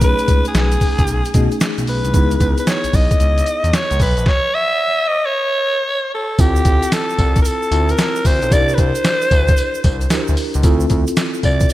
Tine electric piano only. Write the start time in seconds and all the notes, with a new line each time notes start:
0.01 A3 C#4 D#4 G#4
1.34 A3 C#4 D#4 G#4
2.14 B3 D#4 E4 G#4
6.38 C4 E4 F4 A4
7.72 C4 E4 F4 A5
8.50 D4 D#4 G4 A#4
8.57 E4
10.11 D4 E4 G4 A#4
10.63 C4 E4 F4 A4